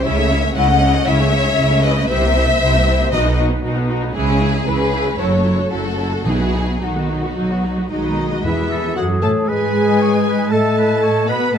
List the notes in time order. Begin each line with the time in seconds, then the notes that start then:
0.04 C#2 C#3 C#4 E4 C#5 E5
0.17 A3 C#4
0.30 C#4 E4
0.43 A3 C#4
0.55 C#2 C#3 C#4 E4 D#5 F#5
0.68 A3 C#4
0.81 C#4 E4
0.94 A3 C#4
1.06 C#2 C#3 C#4 E4 C#5 E5
1.19 A3 C#4
1.32 C#4 E4
1.45 A3 C#4
1.57 C#2 C#3 C#4 E4
1.70 A3 C#4
1.83 C#4 E4 B4 D#5
1.97 A3 C#4
2.09 C2 C3 C4 E4 C5 E5
2.23 A#3 C4
2.36 C4 E4
2.48 A#3 C4
2.61 C2 C3 C4 E4
2.74 A#3 C4
2.88 C4 E4
3.00 A#3 C4
3.12 B1 B2 D#4 F#4 B4 D#5
3.25 B3 D#4
3.38 D#4 F#4
3.51 B3 D#4
3.64 B1 B2 D#4 F#4
3.77 B3 D#4
3.89 D#4 F#4
4.02 B3 D#4
4.15 C#2 C#3 E3 E4 G#4
4.28 G#3 C#4
4.41 E3 E4
4.54 G#3 C#4
4.66 C#2 C#3 E3 E4 G#4 B4
4.80 G#3 C#4
4.93 E3 E4
5.06 G#3 C#4
5.19 F#1 F#2 F#3 E4 A4 C#5
5.32 A3 F#4
5.45 F#3 E4
5.57 A3 F#4
5.70 F#1 F#2 F#3 E4 F#4 A4
5.84 A3 F#4
5.98 F#3 E4
6.12 A3 F#4
6.25 B1 B2 F#3 D#4 E4 G#4
6.39 B3 F#4
6.53 F#3 D#4
6.67 B3 F#4
6.81 B1 D#3 F#3 D#4 F#4
6.95 B3 F#4
7.09 F#3 D#4
7.23 B3 F#4
7.36 B1 F#3 D#4
7.50 B3 F#4
7.64 F#3 D#4
7.78 B3 F#4
7.90 B1 D#3 F#3 G#3 D#4 F#4 D#5
8.04 B3 F#4
8.18 F#3 D#4
8.31 B3 F#4
8.44 E2 E3 E4 G#4 B4 E5
8.72 A4
8.96 F#2 F#3 F#4 G#4 A4 F#5
9.22 A2 A3 A4 C#5 A5
9.48 G#2 G#3 G#4 B4 G#5
10.01 C#5
10.27 B4
10.51 A2 A3 A4 D#5 A5
10.78 B4
11.03 C#5
11.28 B2 B3 B4 D#5 B5
11.54 A2 A3 A4 D#5 A5